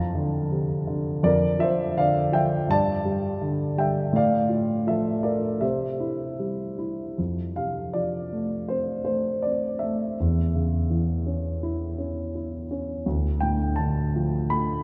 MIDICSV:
0, 0, Header, 1, 2, 480
1, 0, Start_track
1, 0, Tempo, 729040
1, 824, Time_signature, 4, 2, 24, 8
1, 3702, Tempo, 774194
1, 5142, Tempo, 746269
1, 6102, Tempo, 725514
1, 9670, End_track
2, 0, Start_track
2, 0, Title_t, "Grand piano"
2, 0, Program_c, 0, 0
2, 0, Control_c, 0, 64, 127
2, 0, Note_on_c, 0, 41, 60
2, 0, Note_on_c, 0, 77, 56
2, 0, Note_on_c, 0, 81, 67
2, 99, Note_on_c, 0, 50, 51
2, 312, Note_off_c, 0, 81, 0
2, 316, Note_off_c, 0, 77, 0
2, 340, Note_on_c, 0, 48, 47
2, 565, Note_off_c, 0, 50, 0
2, 575, Note_on_c, 0, 50, 52
2, 798, Note_off_c, 0, 41, 0
2, 808, Note_off_c, 0, 48, 0
2, 811, Note_on_c, 0, 41, 67
2, 812, Note_off_c, 0, 50, 0
2, 816, Note_on_c, 0, 74, 84
2, 829, Note_on_c, 0, 70, 63
2, 832, Control_c, 0, 64, 0
2, 945, Control_c, 0, 64, 127
2, 1047, Note_on_c, 0, 53, 55
2, 1050, Note_off_c, 0, 70, 0
2, 1054, Note_on_c, 0, 76, 83
2, 1067, Note_off_c, 0, 74, 0
2, 1070, Note_on_c, 0, 72, 66
2, 1281, Note_off_c, 0, 76, 0
2, 1290, Note_off_c, 0, 72, 0
2, 1294, Note_on_c, 0, 50, 51
2, 1301, Note_on_c, 0, 77, 91
2, 1312, Note_on_c, 0, 74, 70
2, 1518, Note_off_c, 0, 53, 0
2, 1528, Note_on_c, 0, 53, 50
2, 1531, Note_off_c, 0, 74, 0
2, 1536, Note_on_c, 0, 79, 83
2, 1546, Note_on_c, 0, 76, 68
2, 1548, Note_off_c, 0, 77, 0
2, 1748, Note_off_c, 0, 41, 0
2, 1761, Note_off_c, 0, 79, 0
2, 1762, Note_off_c, 0, 50, 0
2, 1766, Note_off_c, 0, 53, 0
2, 1766, Note_off_c, 0, 76, 0
2, 1769, Note_on_c, 0, 43, 62
2, 1781, Note_on_c, 0, 81, 99
2, 1790, Control_c, 0, 64, 0
2, 1792, Note_on_c, 0, 74, 74
2, 1907, Control_c, 0, 64, 127
2, 2008, Note_on_c, 0, 55, 50
2, 2248, Note_on_c, 0, 50, 45
2, 2473, Note_off_c, 0, 55, 0
2, 2475, Note_off_c, 0, 74, 0
2, 2483, Note_on_c, 0, 55, 50
2, 2492, Note_on_c, 0, 79, 76
2, 2503, Note_on_c, 0, 76, 58
2, 2518, Note_off_c, 0, 81, 0
2, 2702, Note_off_c, 0, 43, 0
2, 2715, Note_off_c, 0, 50, 0
2, 2718, Note_on_c, 0, 45, 65
2, 2721, Note_off_c, 0, 55, 0
2, 2722, Note_off_c, 0, 76, 0
2, 2739, Note_on_c, 0, 77, 81
2, 2740, Note_off_c, 0, 79, 0
2, 2743, Note_on_c, 0, 74, 66
2, 2744, Control_c, 0, 64, 0
2, 2845, Control_c, 0, 64, 127
2, 2957, Note_on_c, 0, 65, 49
2, 3191, Note_off_c, 0, 77, 0
2, 3193, Note_off_c, 0, 74, 0
2, 3206, Note_on_c, 0, 53, 48
2, 3212, Note_on_c, 0, 76, 77
2, 3221, Note_on_c, 0, 69, 60
2, 3434, Note_off_c, 0, 65, 0
2, 3443, Note_on_c, 0, 65, 44
2, 3444, Note_off_c, 0, 69, 0
2, 3444, Note_on_c, 0, 74, 65
2, 3450, Note_on_c, 0, 70, 51
2, 3464, Note_off_c, 0, 76, 0
2, 3669, Note_off_c, 0, 45, 0
2, 3679, Note_off_c, 0, 74, 0
2, 3682, Note_off_c, 0, 70, 0
2, 3685, Note_off_c, 0, 53, 0
2, 3689, Note_off_c, 0, 65, 0
2, 3692, Note_on_c, 0, 76, 67
2, 3694, Note_on_c, 0, 48, 58
2, 3704, Note_on_c, 0, 72, 52
2, 3712, Control_c, 0, 64, 0
2, 3833, Control_c, 0, 64, 127
2, 3937, Note_on_c, 0, 64, 48
2, 4153, Note_off_c, 0, 76, 0
2, 4159, Note_off_c, 0, 72, 0
2, 4180, Note_on_c, 0, 55, 42
2, 4414, Note_off_c, 0, 64, 0
2, 4423, Note_on_c, 0, 64, 46
2, 4642, Note_off_c, 0, 48, 0
2, 4654, Note_off_c, 0, 55, 0
2, 4661, Note_off_c, 0, 64, 0
2, 4669, Note_on_c, 0, 41, 42
2, 4678, Control_c, 0, 64, 0
2, 4781, Control_c, 0, 64, 127
2, 4904, Note_on_c, 0, 77, 66
2, 4910, Note_on_c, 0, 48, 35
2, 5136, Note_on_c, 0, 74, 61
2, 5141, Note_on_c, 0, 53, 37
2, 5149, Note_off_c, 0, 77, 0
2, 5386, Note_on_c, 0, 57, 36
2, 5618, Note_on_c, 0, 72, 61
2, 5627, Note_on_c, 0, 60, 42
2, 5636, Note_off_c, 0, 74, 0
2, 5840, Note_off_c, 0, 48, 0
2, 5841, Note_off_c, 0, 72, 0
2, 5850, Note_on_c, 0, 72, 56
2, 5863, Note_off_c, 0, 57, 0
2, 5872, Note_on_c, 0, 57, 37
2, 6076, Note_off_c, 0, 53, 0
2, 6094, Note_on_c, 0, 74, 62
2, 6103, Note_off_c, 0, 72, 0
2, 6107, Note_off_c, 0, 60, 0
2, 6117, Note_on_c, 0, 60, 39
2, 6336, Note_on_c, 0, 76, 61
2, 6348, Note_off_c, 0, 57, 0
2, 6349, Note_off_c, 0, 74, 0
2, 6358, Note_on_c, 0, 57, 40
2, 6558, Note_off_c, 0, 41, 0
2, 6578, Note_off_c, 0, 60, 0
2, 6585, Note_off_c, 0, 57, 0
2, 6594, Control_c, 0, 64, 0
2, 6606, Note_on_c, 0, 40, 50
2, 6724, Control_c, 0, 64, 127
2, 6837, Note_on_c, 0, 49, 39
2, 7069, Note_on_c, 0, 52, 42
2, 7310, Note_on_c, 0, 61, 39
2, 7553, Note_on_c, 0, 64, 48
2, 7763, Note_off_c, 0, 49, 0
2, 7777, Note_off_c, 0, 61, 0
2, 7787, Note_on_c, 0, 61, 41
2, 7996, Note_off_c, 0, 52, 0
2, 8019, Note_off_c, 0, 64, 0
2, 8029, Note_on_c, 0, 64, 42
2, 8224, Note_off_c, 0, 76, 0
2, 8257, Note_off_c, 0, 61, 0
2, 8267, Note_on_c, 0, 61, 46
2, 8477, Note_off_c, 0, 40, 0
2, 8483, Note_off_c, 0, 64, 0
2, 8491, Note_off_c, 0, 61, 0
2, 8500, Note_on_c, 0, 38, 55
2, 8502, Control_c, 0, 64, 0
2, 8620, Control_c, 0, 64, 127
2, 8727, Note_on_c, 0, 79, 70
2, 8740, Note_on_c, 0, 45, 45
2, 8960, Note_on_c, 0, 81, 75
2, 8980, Note_off_c, 0, 79, 0
2, 8981, Note_on_c, 0, 50, 44
2, 9225, Note_on_c, 0, 53, 41
2, 9428, Note_off_c, 0, 81, 0
2, 9452, Note_on_c, 0, 83, 79
2, 9462, Note_on_c, 0, 57, 46
2, 9670, Note_off_c, 0, 38, 0
2, 9670, Note_off_c, 0, 45, 0
2, 9670, Note_off_c, 0, 50, 0
2, 9670, Note_off_c, 0, 53, 0
2, 9670, Note_off_c, 0, 57, 0
2, 9670, Note_off_c, 0, 83, 0
2, 9670, End_track
0, 0, End_of_file